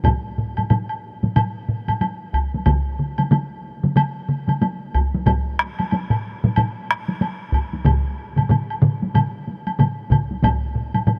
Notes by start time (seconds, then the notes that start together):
0.04 taiko, taiko low-mid, taiko high, high woodblock
0.38 taiko low-mid
0.57 taiko low-mid, taiko high, high woodblock
0.70 taiko low-mid, taiko high, high woodblock
0.89 high woodblock
1.23 taiko low-mid, taiko high
1.36 taiko low-mid, taiko high, high woodblock
1.68 taiko low-mid
1.88 taiko low-mid, taiko high, high woodblock
2.01 taiko high, high woodblock
2.33 taiko, high woodblock
2.54 taiko high
2.66 taiko, taiko mid, taiko high, high woodblock
2.99 taiko mid
3.18 taiko mid, taiko high, high woodblock
3.31 taiko mid, taiko high, high woodblock
3.83 taiko mid, taiko high
3.96 taiko mid, taiko high, high woodblock
4.29 taiko mid
4.48 taiko mid, taiko high, high woodblock
4.62 taiko high, high woodblock
4.94 taiko, high woodblock
5.14 taiko high
5.26 taiko, taiko low-mid, taiko high, high woodblock
5.59 taiko rim
5.79 taiko high, high woodblock
5.91 taiko high, high woodblock
6.10 taiko low-mid, high woodblock
6.44 taiko low-mid, taiko high
6.56 taiko low-mid, taiko high, high woodblock
6.91 taiko rim
7.09 taiko high
7.21 taiko high, high woodblock
7.52 taiko, high woodblock
7.73 taiko high
7.85 taiko, taiko low-mid, taiko mid, taiko high, high woodblock
8.36 taiko low-mid, taiko mid, taiko high, high woodblock
8.49 taiko low-mid, taiko mid, taiko high, high woodblock
8.70 high woodblock
8.82 taiko low-mid, taiko mid
9.02 taiko high
9.14 taiko low-mid, taiko mid, taiko high, high woodblock
9.48 taiko high
9.67 taiko high, high woodblock
9.79 taiko low-mid, taiko mid, taiko high, high woodblock
10.10 taiko, taiko low-mid, taiko mid, high woodblock
10.31 taiko high
10.43 taiko, taiko low-mid, taiko high, high woodblock
10.75 taiko low-mid
10.94 taiko low-mid, taiko high, high woodblock
11.07 taiko low-mid, taiko high, high woodblock